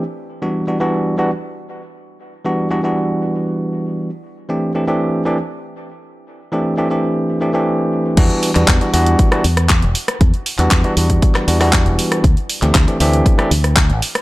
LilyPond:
<<
  \new Staff \with { instrumentName = "Tine electric piano" } { \time 4/4 \key e \minor \tempo 4 = 118 r8. <e g b d' fis'>8 <e g b d' fis'>16 <e g b d' fis'>8. <e g b d' fis'>16 r4. | r8. <e g b d' fis'>8 <e g b d' fis'>16 <e g b d' fis'>2~ <e g b d' fis'>8 | r8. <e a c' d' g'>8 <e a c' d' g'>16 <e a c' d' g'>8. <e a c' d' g'>16 r4. | r8. <e a c' d' g'>8 <e a c' d' g'>16 <e a c' d' g'>4 <e a c' d' g'>16 <e a c' d' g'>4~ <e a c' d' g'>16 |
<e g b d' fis'>8. <e g b d' fis'>8 <e g b d' fis'>16 <e g b d' fis'>8. <e g b d' fis'>16 r4. | r8. <e g b d' fis'>8 <e g b d' fis'>16 <e g b d' fis'>4 <e g b d' fis'>16 <e g b d' fis'>4~ <e g b d' fis'>16 | r8. <e a c' d' g'>8 <e a c' d' g'>16 <e a c' d' g'>8. <e a c' d' g'>16 r4. | }
  \new Staff \with { instrumentName = "Fingered electric bass" } { \clef bass \time 4/4 \key e \minor r1 | r1 | r1 | r1 |
e,16 r8 e,16 e,16 r16 e,8 r8 e,8. e,,16 r8 | e,16 r8 e,16 e,16 r16 e,8 r8 e,8. e,,16 r8 | d,16 r8 d,16 d,16 r16 d,8 r8 d,8. a,,16 r8 | }
  \new DrumStaff \with { instrumentName = "Drums" } \drummode { \time 4/4 r4 r4 r4 r4 | r4 r4 r4 r4 | r4 r4 r4 r4 | r4 r4 r4 r4 |
<cymc hh bd>16 hh16 hho16 <hc hh>16 <hc hh bd>16 hh16 hho16 hh16 <hh bd>16 <hh ss>16 hho16 <hh ss>16 <hc hh bd>16 hh16 hho16 <hh ss>16 | <hh bd>16 hh16 hho16 <hc hh>16 <hc hh bd>16 hh16 hho16 <hh bd>16 <hh bd>16 <hc hh ss>16 hho16 <hho ss>16 <hc hh bd>16 hh16 hho16 <hh ss>16 | <hh bd>16 hh16 hho16 <hc hh>16 <hc hh bd>16 hh16 hho16 hh16 <hh bd>16 <hh ss>16 hho16 <hh ss>16 <hc hh bd>16 hh16 hho16 <hh ss>16 | }
>>